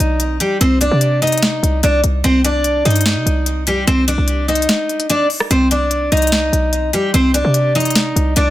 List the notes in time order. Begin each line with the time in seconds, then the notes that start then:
Already playing: D#4 D#5
0.00 B1, closed hi-hat
0.20 closed hi-hat
0.40 G3 G4, closed hi-hat
0.61 C2 C4 C5, closed hi-hat
0.81 D4 D5, closed hi-hat
0.91 C3
1.01 closed hi-hat
1.22 D#4 D#5, closed hi-hat
1.27 closed hi-hat
1.32 closed hi-hat
1.38 closed hi-hat
1.43 snare, closed hi-hat
1.63 C2, closed hi-hat
1.83 C2 D4 D5, closed hi-hat
2.04 C2, closed hi-hat
2.24 C2 C4 C5, closed hi-hat
2.44 D4 D5, closed hi-hat
2.64 closed hi-hat
2.85 G2 D#4 D#5, closed hi-hat
2.90 closed hi-hat
2.96 closed hi-hat
3.01 closed hi-hat
3.06 snare, closed hi-hat
3.16 C3
3.26 C2, closed hi-hat
3.46 closed hi-hat
3.67 G3 G4, closed hi-hat
3.87 C2 C4 C5, closed hi-hat
4.08 D4 D5, closed hi-hat
4.18 C2
4.28 closed hi-hat
4.48 D#4 D#5, closed hi-hat
4.55 closed hi-hat
4.62 closed hi-hat
4.69 snare, closed hi-hat
4.89 closed hi-hat
5.00 closed hi-hat
5.10 D4 D5, closed hi-hat
5.30 open hi-hat
5.40 cross-stick
5.51 C2 C4 C5, closed hi-hat
5.71 D4 D5, closed hi-hat
5.91 closed hi-hat
6.12 C2 D#4 D#5, closed hi-hat
6.17 closed hi-hat
6.22 closed hi-hat
6.27 closed hi-hat
6.32 snare, closed hi-hat
6.53 B1, closed hi-hat
6.73 closed hi-hat
6.93 G3 G4, closed hi-hat
7.14 C2 C4 C5, closed hi-hat
7.34 D4 D5, closed hi-hat
7.45 C3
7.54 closed hi-hat
7.75 D#4 D#5, closed hi-hat
7.80 closed hi-hat
7.85 closed hi-hat
7.90 closed hi-hat
7.95 snare, closed hi-hat
8.16 C2, closed hi-hat
8.36 C2 D4 D5, closed hi-hat